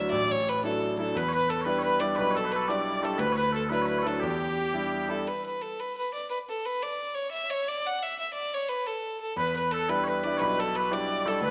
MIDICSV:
0, 0, Header, 1, 4, 480
1, 0, Start_track
1, 0, Tempo, 342661
1, 165, Time_signature, 6, 3, 24, 8
1, 16118, End_track
2, 0, Start_track
2, 0, Title_t, "Bagpipes"
2, 0, Program_c, 0, 109
2, 1616, Note_on_c, 0, 71, 77
2, 1806, Note_off_c, 0, 71, 0
2, 1806, Note_on_c, 0, 73, 62
2, 1863, Note_off_c, 0, 73, 0
2, 1863, Note_on_c, 0, 71, 62
2, 2085, Note_off_c, 0, 71, 0
2, 2085, Note_on_c, 0, 69, 65
2, 2253, Note_off_c, 0, 69, 0
2, 2253, Note_on_c, 0, 73, 74
2, 2303, Note_off_c, 0, 73, 0
2, 2303, Note_on_c, 0, 71, 74
2, 2505, Note_off_c, 0, 71, 0
2, 2505, Note_on_c, 0, 73, 73
2, 2565, Note_off_c, 0, 73, 0
2, 2565, Note_on_c, 0, 71, 73
2, 2823, Note_off_c, 0, 71, 0
2, 2823, Note_on_c, 0, 74, 70
2, 3031, Note_off_c, 0, 74, 0
2, 3031, Note_on_c, 0, 71, 84
2, 3237, Note_off_c, 0, 71, 0
2, 3237, Note_on_c, 0, 73, 71
2, 3294, Note_off_c, 0, 73, 0
2, 3294, Note_on_c, 0, 69, 71
2, 3426, Note_off_c, 0, 69, 0
2, 3426, Note_on_c, 0, 71, 68
2, 3578, Note_off_c, 0, 71, 0
2, 3578, Note_on_c, 0, 69, 80
2, 3755, Note_off_c, 0, 69, 0
2, 3755, Note_on_c, 0, 74, 78
2, 4248, Note_off_c, 0, 74, 0
2, 4248, Note_on_c, 0, 69, 58
2, 4453, Note_off_c, 0, 69, 0
2, 4453, Note_on_c, 0, 71, 88
2, 4659, Note_off_c, 0, 71, 0
2, 4659, Note_on_c, 0, 73, 59
2, 4713, Note_off_c, 0, 73, 0
2, 4713, Note_on_c, 0, 71, 59
2, 4927, Note_off_c, 0, 71, 0
2, 4927, Note_on_c, 0, 69, 64
2, 5173, Note_off_c, 0, 69, 0
2, 5173, Note_on_c, 0, 71, 83
2, 5350, Note_off_c, 0, 71, 0
2, 5350, Note_on_c, 0, 73, 70
2, 5405, Note_off_c, 0, 73, 0
2, 5405, Note_on_c, 0, 71, 70
2, 5581, Note_off_c, 0, 71, 0
2, 5581, Note_on_c, 0, 73, 62
2, 5637, Note_off_c, 0, 73, 0
2, 5637, Note_on_c, 0, 69, 62
2, 5881, Note_off_c, 0, 69, 0
2, 5881, Note_on_c, 0, 67, 59
2, 7108, Note_off_c, 0, 67, 0
2, 13127, Note_on_c, 0, 71, 78
2, 13636, Note_off_c, 0, 71, 0
2, 13636, Note_on_c, 0, 69, 60
2, 13855, Note_off_c, 0, 69, 0
2, 13855, Note_on_c, 0, 71, 79
2, 14065, Note_off_c, 0, 71, 0
2, 14065, Note_on_c, 0, 73, 72
2, 14116, Note_off_c, 0, 73, 0
2, 14116, Note_on_c, 0, 71, 72
2, 14531, Note_off_c, 0, 71, 0
2, 14531, Note_on_c, 0, 73, 75
2, 14591, Note_off_c, 0, 73, 0
2, 14591, Note_on_c, 0, 71, 75
2, 14829, Note_off_c, 0, 71, 0
2, 14829, Note_on_c, 0, 69, 68
2, 15078, Note_off_c, 0, 69, 0
2, 15078, Note_on_c, 0, 71, 57
2, 15299, Note_off_c, 0, 71, 0
2, 15299, Note_on_c, 0, 74, 73
2, 15773, Note_off_c, 0, 74, 0
2, 15773, Note_on_c, 0, 69, 62
2, 16022, Note_off_c, 0, 69, 0
2, 16022, Note_on_c, 0, 71, 75
2, 16118, Note_off_c, 0, 71, 0
2, 16118, End_track
3, 0, Start_track
3, 0, Title_t, "Fiddle"
3, 0, Program_c, 1, 110
3, 148, Note_on_c, 1, 74, 100
3, 439, Note_on_c, 1, 73, 92
3, 460, Note_off_c, 1, 74, 0
3, 682, Note_on_c, 1, 71, 91
3, 703, Note_off_c, 1, 73, 0
3, 899, Note_off_c, 1, 71, 0
3, 908, Note_on_c, 1, 69, 78
3, 1348, Note_off_c, 1, 69, 0
3, 1383, Note_on_c, 1, 69, 83
3, 1638, Note_on_c, 1, 71, 98
3, 1659, Note_off_c, 1, 69, 0
3, 1872, Note_off_c, 1, 71, 0
3, 1892, Note_on_c, 1, 71, 86
3, 2102, Note_on_c, 1, 69, 87
3, 2123, Note_off_c, 1, 71, 0
3, 2327, Note_off_c, 1, 69, 0
3, 2333, Note_on_c, 1, 71, 82
3, 2562, Note_off_c, 1, 71, 0
3, 2568, Note_on_c, 1, 71, 85
3, 2800, Note_on_c, 1, 74, 72
3, 2821, Note_off_c, 1, 71, 0
3, 3030, Note_off_c, 1, 74, 0
3, 3038, Note_on_c, 1, 71, 100
3, 3318, Note_on_c, 1, 69, 89
3, 3339, Note_off_c, 1, 71, 0
3, 3523, Note_on_c, 1, 71, 86
3, 3544, Note_off_c, 1, 69, 0
3, 3791, Note_on_c, 1, 74, 78
3, 3812, Note_off_c, 1, 71, 0
3, 4270, Note_on_c, 1, 69, 74
3, 4291, Note_off_c, 1, 74, 0
3, 4468, Note_on_c, 1, 71, 93
3, 4489, Note_off_c, 1, 69, 0
3, 4711, Note_off_c, 1, 71, 0
3, 4720, Note_on_c, 1, 71, 83
3, 4942, Note_off_c, 1, 71, 0
3, 4980, Note_on_c, 1, 69, 91
3, 5081, Note_off_c, 1, 69, 0
3, 5226, Note_on_c, 1, 71, 79
3, 5449, Note_off_c, 1, 71, 0
3, 5458, Note_on_c, 1, 71, 78
3, 5697, Note_on_c, 1, 69, 66
3, 5718, Note_off_c, 1, 71, 0
3, 5921, Note_on_c, 1, 67, 85
3, 5942, Note_off_c, 1, 69, 0
3, 7128, Note_off_c, 1, 67, 0
3, 7141, Note_on_c, 1, 69, 66
3, 7386, Note_on_c, 1, 71, 76
3, 7407, Note_off_c, 1, 69, 0
3, 7627, Note_off_c, 1, 71, 0
3, 7638, Note_on_c, 1, 71, 69
3, 7870, Note_on_c, 1, 69, 76
3, 7891, Note_off_c, 1, 71, 0
3, 8117, Note_on_c, 1, 71, 78
3, 8138, Note_off_c, 1, 69, 0
3, 8353, Note_off_c, 1, 71, 0
3, 8365, Note_on_c, 1, 71, 76
3, 8569, Note_off_c, 1, 71, 0
3, 8597, Note_on_c, 1, 74, 69
3, 8802, Note_off_c, 1, 74, 0
3, 8828, Note_on_c, 1, 71, 80
3, 8937, Note_off_c, 1, 71, 0
3, 9093, Note_on_c, 1, 69, 76
3, 9320, Note_on_c, 1, 71, 78
3, 9341, Note_off_c, 1, 69, 0
3, 9557, Note_on_c, 1, 74, 77
3, 9578, Note_off_c, 1, 71, 0
3, 10011, Note_on_c, 1, 73, 77
3, 10032, Note_off_c, 1, 74, 0
3, 10235, Note_off_c, 1, 73, 0
3, 10243, Note_on_c, 1, 76, 86
3, 10510, Note_on_c, 1, 73, 88
3, 10531, Note_off_c, 1, 76, 0
3, 10760, Note_on_c, 1, 74, 94
3, 10781, Note_off_c, 1, 73, 0
3, 11017, Note_on_c, 1, 78, 90
3, 11038, Note_off_c, 1, 74, 0
3, 11243, Note_on_c, 1, 76, 86
3, 11264, Note_off_c, 1, 78, 0
3, 11460, Note_off_c, 1, 76, 0
3, 11468, Note_on_c, 1, 76, 70
3, 11667, Note_off_c, 1, 76, 0
3, 11675, Note_on_c, 1, 74, 96
3, 11957, Note_on_c, 1, 73, 82
3, 11978, Note_off_c, 1, 74, 0
3, 12164, Note_on_c, 1, 71, 84
3, 12185, Note_off_c, 1, 73, 0
3, 12419, Note_on_c, 1, 69, 72
3, 12440, Note_off_c, 1, 71, 0
3, 12886, Note_off_c, 1, 69, 0
3, 12894, Note_on_c, 1, 69, 74
3, 13111, Note_off_c, 1, 69, 0
3, 13144, Note_on_c, 1, 71, 101
3, 13372, Note_off_c, 1, 71, 0
3, 13400, Note_on_c, 1, 71, 73
3, 13601, Note_on_c, 1, 69, 85
3, 13622, Note_off_c, 1, 71, 0
3, 13857, Note_on_c, 1, 71, 81
3, 13878, Note_off_c, 1, 69, 0
3, 14105, Note_off_c, 1, 71, 0
3, 14124, Note_on_c, 1, 71, 65
3, 14340, Note_on_c, 1, 74, 78
3, 14361, Note_off_c, 1, 71, 0
3, 14557, Note_on_c, 1, 71, 99
3, 14578, Note_off_c, 1, 74, 0
3, 14853, Note_on_c, 1, 69, 78
3, 14874, Note_off_c, 1, 71, 0
3, 15063, Note_on_c, 1, 71, 90
3, 15084, Note_off_c, 1, 69, 0
3, 15309, Note_on_c, 1, 74, 91
3, 15330, Note_off_c, 1, 71, 0
3, 15798, Note_on_c, 1, 69, 75
3, 15819, Note_off_c, 1, 74, 0
3, 15993, Note_off_c, 1, 69, 0
3, 16002, Note_on_c, 1, 71, 102
3, 16118, Note_off_c, 1, 71, 0
3, 16118, End_track
4, 0, Start_track
4, 0, Title_t, "Grand piano"
4, 0, Program_c, 2, 0
4, 0, Note_on_c, 2, 54, 58
4, 0, Note_on_c, 2, 62, 42
4, 0, Note_on_c, 2, 64, 56
4, 169, Note_on_c, 2, 33, 60
4, 400, Note_off_c, 2, 54, 0
4, 404, Note_off_c, 2, 64, 0
4, 406, Note_off_c, 2, 62, 0
4, 888, Note_on_c, 2, 62, 51
4, 891, Note_on_c, 2, 54, 49
4, 900, Note_on_c, 2, 64, 55
4, 1344, Note_off_c, 2, 54, 0
4, 1355, Note_off_c, 2, 62, 0
4, 1361, Note_off_c, 2, 64, 0
4, 1365, Note_on_c, 2, 54, 51
4, 1376, Note_on_c, 2, 62, 45
4, 1382, Note_on_c, 2, 64, 51
4, 1560, Note_off_c, 2, 33, 0
4, 1593, Note_off_c, 2, 54, 0
4, 1598, Note_off_c, 2, 62, 0
4, 1601, Note_off_c, 2, 64, 0
4, 1606, Note_on_c, 2, 40, 60
4, 2315, Note_on_c, 2, 55, 50
4, 2323, Note_on_c, 2, 62, 46
4, 2325, Note_on_c, 2, 64, 49
4, 2779, Note_off_c, 2, 55, 0
4, 2787, Note_off_c, 2, 62, 0
4, 2794, Note_off_c, 2, 64, 0
4, 2800, Note_on_c, 2, 55, 52
4, 2808, Note_on_c, 2, 62, 45
4, 2815, Note_on_c, 2, 64, 57
4, 2998, Note_off_c, 2, 40, 0
4, 3056, Note_on_c, 2, 35, 66
4, 3275, Note_off_c, 2, 55, 0
4, 3279, Note_off_c, 2, 62, 0
4, 3282, Note_off_c, 2, 64, 0
4, 3748, Note_on_c, 2, 55, 52
4, 3764, Note_on_c, 2, 62, 44
4, 3765, Note_on_c, 2, 64, 56
4, 4195, Note_off_c, 2, 55, 0
4, 4200, Note_off_c, 2, 62, 0
4, 4215, Note_off_c, 2, 64, 0
4, 4216, Note_on_c, 2, 55, 52
4, 4221, Note_on_c, 2, 62, 44
4, 4236, Note_on_c, 2, 64, 54
4, 4444, Note_off_c, 2, 35, 0
4, 4457, Note_off_c, 2, 55, 0
4, 4459, Note_off_c, 2, 62, 0
4, 4461, Note_on_c, 2, 38, 68
4, 4466, Note_off_c, 2, 64, 0
4, 5175, Note_on_c, 2, 54, 51
4, 5183, Note_on_c, 2, 62, 47
4, 5190, Note_on_c, 2, 64, 54
4, 5641, Note_off_c, 2, 54, 0
4, 5652, Note_off_c, 2, 64, 0
4, 5654, Note_off_c, 2, 62, 0
4, 5662, Note_on_c, 2, 54, 52
4, 5673, Note_on_c, 2, 64, 56
4, 5675, Note_on_c, 2, 62, 52
4, 5867, Note_off_c, 2, 38, 0
4, 5900, Note_off_c, 2, 54, 0
4, 5905, Note_off_c, 2, 64, 0
4, 5906, Note_off_c, 2, 62, 0
4, 5913, Note_on_c, 2, 40, 62
4, 6628, Note_on_c, 2, 55, 50
4, 6634, Note_on_c, 2, 62, 43
4, 6637, Note_on_c, 2, 64, 55
4, 7102, Note_off_c, 2, 62, 0
4, 7106, Note_off_c, 2, 55, 0
4, 7111, Note_off_c, 2, 64, 0
4, 7123, Note_on_c, 2, 62, 45
4, 7128, Note_on_c, 2, 55, 48
4, 7138, Note_on_c, 2, 64, 55
4, 7314, Note_off_c, 2, 40, 0
4, 7352, Note_off_c, 2, 62, 0
4, 7354, Note_off_c, 2, 55, 0
4, 7359, Note_off_c, 2, 64, 0
4, 13116, Note_on_c, 2, 40, 56
4, 13847, Note_on_c, 2, 55, 49
4, 13847, Note_on_c, 2, 64, 49
4, 13854, Note_on_c, 2, 62, 43
4, 14319, Note_off_c, 2, 55, 0
4, 14319, Note_off_c, 2, 64, 0
4, 14323, Note_off_c, 2, 62, 0
4, 14348, Note_on_c, 2, 55, 47
4, 14354, Note_on_c, 2, 62, 42
4, 14360, Note_on_c, 2, 64, 52
4, 14518, Note_off_c, 2, 40, 0
4, 14583, Note_on_c, 2, 35, 70
4, 14813, Note_off_c, 2, 55, 0
4, 14816, Note_off_c, 2, 62, 0
4, 14819, Note_off_c, 2, 64, 0
4, 15272, Note_on_c, 2, 55, 51
4, 15277, Note_on_c, 2, 64, 51
4, 15282, Note_on_c, 2, 62, 42
4, 15749, Note_off_c, 2, 62, 0
4, 15749, Note_off_c, 2, 64, 0
4, 15750, Note_off_c, 2, 55, 0
4, 15770, Note_on_c, 2, 62, 48
4, 15770, Note_on_c, 2, 64, 61
4, 15771, Note_on_c, 2, 55, 51
4, 15970, Note_off_c, 2, 35, 0
4, 15984, Note_on_c, 2, 38, 56
4, 15997, Note_off_c, 2, 55, 0
4, 15997, Note_off_c, 2, 62, 0
4, 15997, Note_off_c, 2, 64, 0
4, 16118, Note_off_c, 2, 38, 0
4, 16118, End_track
0, 0, End_of_file